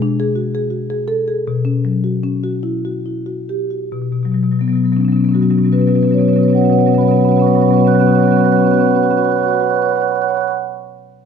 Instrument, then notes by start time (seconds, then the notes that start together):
marimba
Already playing: B2 G#4
0.02 D4
0.20 G#4
0.36 F#4
0.55 G#4
0.70 F#4
0.90 G#4
1.08 A4
1.28 G#4
1.47 B2
1.65 C#4
1.85 F#3
2.04 F#4
2.23 C#4
2.43 F#4
2.63 E4
2.85 F#4
3.06 E4
3.26 F#4
3.49 G4
3.71 F#4
3.92 B2
4.02 B2
4.12 B2
4.23 B2 F#3
4.32 B2 F#3
4.43 B2 F#3
4.52 B2 F#3
4.59 B2 F#3 B3
4.68 F#3 B3
4.73 B2 F#3
4.77 B3
4.83 B2 F#3 B3
4.92 B2 F#3 B3
4.97 F#3 C#4
5.01 B2 B3 C#4
5.08 F#3 B3
5.12 B2 F#3 C#4
5.16 B3 C#4
5.23 B2 F#3 B3
5.29 B2 B3 C#4
5.34 F#3 C#4 F#4
5.40 B2 F#3 B3 C#4 F#4
5.48 B2 F#3 B3 C#4 F#4
5.55 F#3 B3 C#4 F#4
5.60 B2 B3
5.65 F#3 C#4 F#4
5.69 B2 F#3 B3 F#4 B4
5.74 C#4
5.78 B2 F#3 B3 C#4 F#4 B4
5.86 B2 F#3 B3 C#4 F#4 B4
5.94 F#3 B3 C#4 F#4 B4
5.98 B2 B4
6.03 F#3 B3 C#4 F#4
6.08 B2 F#3 B3 F#4 B4
6.12 C#4 B4 C#5
6.17 B2 F#3 B3 F#4
6.21 C#4 F#4 B4 C#5
6.25 B2 F#3 B3 C#4 B4 C#5
6.33 F#3 B3 C#4 F#4 B4 C#5
6.38 B2 B3 F#4
6.43 F#3 C#4 B4 C#5
6.48 B2 B3 C#4 F#4 B4 C#5
6.53 F#3 B3 F#4 F#5
6.57 B2 C#4 B4 C#5
6.62 F#3 B3 C#4 F#4 C#5 F#5
6.66 B4 F#5
6.70 B2 F#3 B3 C#4 F#4 B4 C#5
6.75 F#3 B3 F#4 F#5
6.79 B2 C#4 B4 C#5 F#5
6.85 F#3 B3 C#4 F#4 B4 C#5 F#5
6.89 B2 F#4 B4
6.94 F#3 B3 C#4 C#5 F#5
6.98 B2 B3 F#4 B4 C#5 F#5 B5
7.03 F#3 C#4 F#4 B5
7.08 B2 F#3 B3 C#4 B4 C#5 F#5 B5
7.13 B3 F#4 B4 C#5 F#5
7.18 B2 F#3 C#4 F#4 B4 B5
7.22 B3 C#4 C#5 F#5 B5
7.27 B2 F#3 F#4 B4 F#5 B5
7.31 B3 C#4 C#5 F#5
7.36 B2 F#3 C#4 F#4 B4 C#5 B5
7.40 B3 F#4 B4 F#5 B5 C#6
7.46 B2 F#3 B3 C#4 C#5 F#5 B5 C#6
7.51 B3 C#4 F#4 B4 C#5 F#5 C#6
7.55 B2 F#3 F#4 B4 B5
7.60 F#3 B3 C#4 C#5 F#5 B5 C#6
7.65 B2 C#4 F#4 B4 C#5 F#5 B5 C#6
7.70 F#3 B3 F#4 F#5 C#6
7.74 B2 B3 C#4 B4 C#5 B5
7.78 F#3 F#4 B4 F#5 B5 C#6
7.84 F#3 B3 C#4 F#4 B4 C#5 F#5 B5 C#6
7.88 B2 C#5 F#6
7.92 F#3 B3 C#4 F#4 B4 F#5 B5 C#6 F#6
7.98 B2 B3 C#4 F#4 B4 C#5 F#5 B5 C#6 F#6
8.04 B2 F#3 C#4 F#4 C#5 F#5 B5 C#6 F#6
8.08 F#3 B3 B4
8.12 B3 C#4 F#4 B4 C#5 F#5 B5 C#6 F#6
8.17 B2 F#3 F#5 B5 C#6 F#6
8.22 B3 C#4 F#4 B4 C#5 C#6 F#6
8.26 F#3 C#5 F#5 B5
8.31 B3 C#4 F#4 B4 F#5 B5 C#6 F#6
8.36 F#3 B3 F#4 B4 C#5 F#5 C#6 F#6
8.40 C#4 B5 C#6
8.44 F#3 B3 F#4 B4 C#5 F#5 B5 F#6
8.49 F#3 C#4 B4 C#5 C#6 F#6
8.53 B3 C#4 F#4 F#5 B5 C#6
8.59 F#4 B4 C#5 F#5 B5 C#6 F#6
8.63 B3 C#4 F#4 B4 C#5 F#5 B5 F#6
8.67 B3 C#6 F#6
8.71 C#4 F#4 B4 C#5 F#5 B5 C#6
8.77 B3 C#4 F#4 B4 F#5 B5 C#6 F#6
8.81 B3 C#5 B5 F#6
8.86 C#4 F#4 B4 C#5 F#5 C#6
8.91 F#5 B5 C#6 F#6
8.95 C#4 F#4 B4 C#5 B5 F#6
8.99 C#4 B4 F#5 C#6
9.03 F#4 C#5 F#5 B5 C#6 F#6
9.09 C#4 F#4 B4 C#5 F#5 B5 C#6 F#6
9.16 C#4 F#4 B4 C#5 F#5 B5 C#6 F#6
9.22 F#4 B4 C#5 F#5 B5 C#6 F#6
9.28 F#4 B4 C#5 F#5 B5 C#6 F#6
9.35 F#4 B4 F#5 B5 C#6 F#6
9.40 C#5 B5 C#6 F#6
9.45 F#4 B4 C#5 F#5 B5
9.50 F#4 B4 F#5 C#6 F#6
9.55 C#5 F#5 B5 C#6 F#6
9.60 F#4 B4 C#5 B5 C#6 F#6
9.64 B4 F#5 B5
9.70 C#5 F#5 B5 C#6 F#6
9.74 B4 F#5 C#6 F#6
9.78 B4 C#5 B5 F#6
9.83 C#5 F#5 B5 C#6
9.89 B4 C#5 F#5 B5 C#6 F#6
9.95 B4 F#5 B5 C#6 F#6
10.00 C#5 F#5 C#6 F#6
10.04 C#5 B5 F#6
10.09 F#5 B5 C#6
10.15 C#5 F#5 B5 C#6 F#6
10.21 C#5 F#5 B5 C#6 F#6
10.28 C#5 F#5 B5 C#6 F#6
10.34 C#5 F#5 B5 C#6 F#6
10.41 F#5 B5 C#6 F#6
10.48 F#5 B5 C#6 F#6